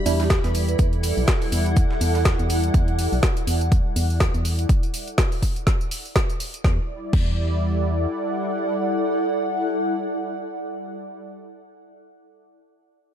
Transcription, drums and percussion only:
0.06 open hi-hat, tambourine, shaker
0.20 snare, tambourine
0.30 kick, snare, closed hi-hat, tambourine, shaker
0.44 snare, closed hi-hat, tambourine
0.55 open hi-hat, tambourine, shaker
0.68 closed hi-hat, tambourine
0.79 kick, closed hi-hat, tambourine, shaker
0.93 closed hi-hat
1.03 open hi-hat, tambourine, shaker
1.17 tambourine
1.28 kick, snare, closed hi-hat, tambourine, shaker
1.42 open hi-hat, tambourine
1.52 open hi-hat, tambourine, shaker
1.66 closed hi-hat, tambourine
1.77 kick, closed hi-hat, tambourine, shaker
1.91 snare
2.01 open hi-hat, tambourine, shaker
2.15 snare, tambourine
2.25 kick, snare, closed hi-hat, tambourine, shaker
2.39 closed hi-hat, tambourine
2.50 open hi-hat, tambourine, shaker
2.64 closed hi-hat, tambourine
2.74 kick, closed hi-hat, tambourine
2.88 closed hi-hat
2.99 open hi-hat, tambourine
3.13 tambourine
3.23 kick, snare, closed hi-hat, tambourine
3.37 closed hi-hat, tambourine
3.47 open hi-hat, tambourine
3.61 closed hi-hat, tambourine
3.72 kick, closed hi-hat, tambourine
3.96 open hi-hat, tambourine
4.10 tambourine
4.20 kick, snare, closed hi-hat, tambourine
4.34 closed hi-hat, tambourine
4.45 open hi-hat, tambourine
4.59 closed hi-hat, tambourine
4.69 kick, closed hi-hat, tambourine
4.83 closed hi-hat, tambourine
4.94 open hi-hat, tambourine
5.08 closed hi-hat, tambourine
5.18 kick, snare, closed hi-hat, tambourine
5.32 open hi-hat, tambourine
5.42 kick, open hi-hat, tambourine
5.56 closed hi-hat, tambourine
5.67 kick, snare, closed hi-hat, tambourine
5.81 tambourine
5.91 open hi-hat, tambourine
6.05 tambourine
6.16 kick, snare, closed hi-hat, tambourine
6.30 closed hi-hat, tambourine
6.40 open hi-hat, tambourine
6.54 closed hi-hat, tambourine
6.64 kick, snare
7.13 kick, crash

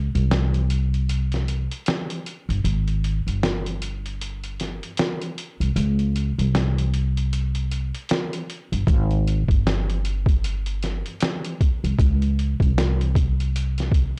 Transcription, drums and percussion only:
0.15 closed hi-hat
0.31 snare, closed hi-hat
0.54 closed hi-hat
0.70 closed hi-hat
0.94 closed hi-hat
1.09 closed hi-hat
1.32 snare, closed hi-hat
1.48 closed hi-hat
1.71 closed hi-hat
1.86 snare, closed hi-hat
2.10 closed hi-hat
2.26 closed hi-hat
2.50 closed hi-hat
2.65 closed hi-hat
2.88 closed hi-hat
3.04 closed hi-hat
3.28 closed hi-hat
3.43 snare, closed hi-hat
3.66 closed hi-hat
3.82 closed hi-hat
4.06 closed hi-hat
4.21 closed hi-hat
4.44 closed hi-hat
4.60 snare, closed hi-hat
4.83 closed hi-hat
4.97 snare, closed hi-hat
5.22 closed hi-hat
5.38 closed hi-hat
5.61 closed hi-hat
5.76 closed hi-hat
5.99 closed hi-hat
6.16 closed hi-hat
6.39 closed hi-hat
6.55 snare, closed hi-hat
6.78 closed hi-hat
6.94 closed hi-hat
7.17 closed hi-hat
7.33 closed hi-hat
7.55 closed hi-hat
7.71 closed hi-hat
7.95 closed hi-hat
8.09 snare, closed hi-hat
8.33 closed hi-hat
8.50 closed hi-hat
8.73 closed hi-hat
8.87 kick, closed hi-hat
9.11 closed hi-hat
9.27 closed hi-hat
9.48 kick, closed hi-hat
9.67 snare, closed hi-hat
9.90 closed hi-hat
10.05 closed hi-hat
10.26 kick, closed hi-hat
10.44 closed hi-hat
10.66 closed hi-hat
10.83 snare, closed hi-hat
11.06 closed hi-hat
11.20 snare, closed hi-hat
11.45 closed hi-hat
11.61 kick, closed hi-hat
11.84 closed hi-hat
11.99 kick, closed hi-hat
12.22 closed hi-hat
12.39 closed hi-hat
12.60 kick, closed hi-hat
12.78 snare, closed hi-hat
13.01 closed hi-hat
13.15 kick, closed hi-hat
13.40 closed hi-hat
13.56 closed hi-hat
13.78 snare, closed hi-hat
13.92 kick, closed hi-hat

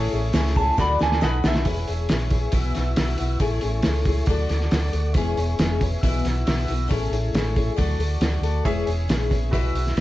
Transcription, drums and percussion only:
0.11 shaker
0.33 snare, open hi-hat, shaker
0.46 snare
0.55 kick, shaker
0.77 kick, snare, shaker
0.99 snare, shaker
1.12 snare
1.21 snare, shaker
1.43 snare, shaker
1.55 snare
1.65 kick, open hi-hat
1.88 open hi-hat
2.09 snare, open hi-hat
2.30 kick, open hi-hat
2.52 kick, open hi-hat
2.75 snare, open hi-hat
2.96 snare, open hi-hat
3.18 open hi-hat
3.40 kick, open hi-hat
3.61 open hi-hat
3.82 snare, open hi-hat
4.05 kick, open hi-hat
4.26 kick, open hi-hat
4.49 snare, open hi-hat
4.61 snare
4.71 snare, open hi-hat
4.93 open hi-hat
5.14 kick, open hi-hat
5.37 open hi-hat
5.59 snare, open hi-hat
5.81 kick, open hi-hat
6.03 kick, open hi-hat
6.25 snare, open hi-hat
6.47 snare, open hi-hat
6.68 open hi-hat
6.91 kick, open hi-hat
7.13 open hi-hat
7.35 snare, open hi-hat
7.56 kick, open hi-hat
7.78 kick, open hi-hat
8.00 open hi-hat
8.21 snare, open hi-hat
8.43 open hi-hat
8.65 kick, open hi-hat
8.87 open hi-hat
9.09 snare, open hi-hat
9.31 kick, open hi-hat
9.53 kick, open hi-hat
9.75 open hi-hat
9.87 snare
9.97 open hi-hat

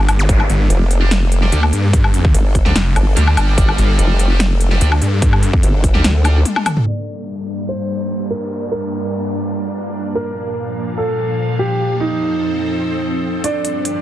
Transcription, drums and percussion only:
0.09 closed hi-hat, low woodblock
0.29 kick, closed hi-hat
0.40 low woodblock
0.50 closed hi-hat
0.70 closed hi-hat
0.91 closed hi-hat
1.11 snare, closed hi-hat
1.32 closed hi-hat
1.43 snare
1.52 closed hi-hat
1.63 low woodblock
1.73 closed hi-hat
1.93 kick, closed hi-hat
2.04 low woodblock
2.14 closed hi-hat
2.25 kick
2.35 closed hi-hat
2.55 kick, closed hi-hat
2.66 snare
2.76 snare, closed hi-hat
2.96 closed hi-hat, low woodblock
3.17 closed hi-hat
3.27 low woodblock
3.37 closed hi-hat, low woodblock
3.58 kick, closed hi-hat
3.69 low woodblock
3.78 closed hi-hat
3.99 closed hi-hat
4.19 closed hi-hat
4.40 snare, closed hi-hat
4.61 closed hi-hat
4.71 snare
4.81 closed hi-hat
4.92 low woodblock
5.02 closed hi-hat
5.22 kick, closed hi-hat
5.33 low woodblock
5.43 closed hi-hat
5.53 kick
5.63 closed hi-hat
5.84 kick, closed hi-hat
5.95 snare
6.04 snare, closed hi-hat
6.25 closed hi-hat, low woodblock
6.45 closed hi-hat, high tom
6.56 high tom, low woodblock
6.66 closed hi-hat, mid tom, low woodblock
6.77 mid tom
13.44 closed hi-hat
13.65 closed hi-hat
13.85 closed hi-hat

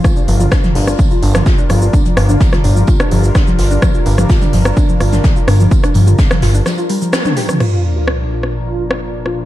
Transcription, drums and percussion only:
0.04 kick, cross-stick, tambourine, shaker
0.17 shaker
0.28 open hi-hat, tambourine
0.40 closed hi-hat, mid tom, shaker
0.51 kick, cross-stick, snare, tambourine, shaker
0.63 snare, mid tom, shaker
0.75 snare, open hi-hat
0.87 cross-stick, shaker
0.99 kick, tambourine, shaker
1.11 shaker
1.23 open hi-hat, tambourine
1.35 cross-stick, snare, mid tom, shaker
1.46 kick, snare, tambourine, shaker
1.58 shaker
1.69 cross-stick, open hi-hat, tambourine
1.82 shaker
1.93 kick, tambourine, shaker
2.05 closed hi-hat, shaker
2.17 cross-stick, open hi-hat, tambourine
2.29 closed hi-hat, mid tom, shaker
2.40 kick, snare, tambourine, shaker
2.52 cross-stick, snare, mid tom, shaker
2.64 open hi-hat, tambourine
2.76 shaker
2.87 kick, tambourine, shaker
3.00 cross-stick, shaker
3.11 open hi-hat, tambourine
3.23 closed hi-hat, shaker
3.35 kick, cross-stick, snare, tambourine, shaker
3.47 snare, shaker
3.59 snare, open hi-hat, tambourine
3.71 shaker
3.82 kick, cross-stick, tambourine, shaker
3.94 shaker
4.06 open hi-hat, tambourine
4.18 cross-stick, closed hi-hat, mid tom, shaker
4.30 kick, snare, tambourine, shaker
4.41 snare, mid tom, shaker
4.53 snare, open hi-hat
4.65 cross-stick, shaker
4.77 kick, tambourine, shaker
4.89 shaker
5.00 cross-stick, open hi-hat, tambourine
5.12 snare, mid tom, shaker
5.24 kick, snare, tambourine, shaker
5.36 shaker
5.48 cross-stick, open hi-hat, tambourine
5.60 shaker
5.71 kick, tambourine, shaker
5.83 cross-stick, closed hi-hat, shaker
5.94 open hi-hat, tambourine
6.07 closed hi-hat, mid tom, shaker
6.19 kick, snare, tambourine, shaker
6.31 cross-stick, snare, mid tom, shaker
6.42 snare, open hi-hat, tambourine
6.54 shaker
6.66 cross-stick, snare, tambourine, shaker
6.78 shaker
6.89 open hi-hat, tambourine
7.02 closed hi-hat, shaker
7.12 cross-stick, snare, high tom, tambourine, shaker
7.25 snare, mid tom, high tom, shaker
7.36 snare, open hi-hat, tambourine
7.49 cross-stick, mid tom, shaker
7.60 cross-stick, crash
7.96 closed hi-hat
8.08 cross-stick
8.20 snare
8.31 snare, open hi-hat
8.43 cross-stick
8.78 tambourine
8.90 cross-stick, snare
9.26 cross-stick

